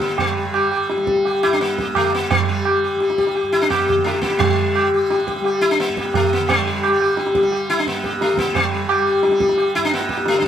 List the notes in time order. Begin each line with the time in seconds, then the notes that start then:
Already playing: G2 D3 G3
0.00 A#3, tabla ke
0.09 tabla te
0.18 G3, tabla tin, tabla ge
0.37 G4
0.45 G3
0.54 G4, tabla na
0.72 G4, tabla na
0.90 G4, tabla te
0.97 G3, tabla te
1.07 tabla ke
1.17 tabla te
1.25 G4, tabla tin
1.43 G2 E4, tabla na
1.53 D4
1.61 A#3, tabla te
1.70 tabla te
1.78 G4, tabla ke
1.87 tabla te
1.95 D3 A3, tabla na, tabla ge
2.13 A#3, tabla te
2.30 G3, tabla tin, tabla ge
2.45 G3
2.49 G4
2.65 tabla na
2.84 G4
2.95 G3
3.00 G4, tabla te
3.10 tabla te
3.18 G4, tabla ke
3.27 tabla te
3.35 G4, tabla tin
3.43 G2
3.52 E4
3.62 D4
3.70 A#3 G4, tabla na, tabla ge
3.88 G4, tabla ge
3.94 D3
4.04 A3 G4, tabla te
4.15 tabla te
4.22 A#3 G4, tabla ke
4.32 tabla te
4.39 D3 G3, tabla tin, tabla ge
4.59 G4
4.75 G4, tabla na
4.91 G3 G4
5.11 G4, tabla te
5.19 tabla te
5.27 G4, tabla ke
5.36 tabla te
5.41 G3 G4
5.45 tabla tin
5.61 E4
5.71 D4
5.80 A#3, tabla te
5.88 G2, tabla te
5.97 G4, tabla ke
6.05 tabla te
6.14 A3, tabla tin, tabla ge
6.33 A#3
6.38 D3
6.49 G3, tabla tin, tabla ge
6.67 G4
6.83 G4, tabla na
6.87 G3
7.01 G4, tabla na
7.17 G4, tabla te
7.27 tabla te
7.35 G3 G4, tabla ke
7.43 tabla te
7.52 G4, tabla tin
7.70 E4
7.79 D4
7.86 G2 A#3, tabla te
7.95 tabla te
8.04 G4, tabla ke
8.12 tabla te
8.21 A3, tabla te
8.29 D3, tabla te
8.38 A#3, tabla ke
8.46 tabla te
8.55 G3, tabla tin, tabla ge
8.73 G4
8.82 G3
8.89 G4, tabla na
9.07 G4
9.23 G4, tabla te
9.28 G3, tabla te
9.40 G4, tabla ke
9.49 tabla te
9.58 G4, tabla tin
9.75 G2 E4
9.85 D4
9.91 A#3, tabla te
10.00 tabla te
10.09 G4, tabla ke
10.18 tabla te
10.25 D3 A3, tabla te
10.34 tabla te
10.39 D4, tabla ke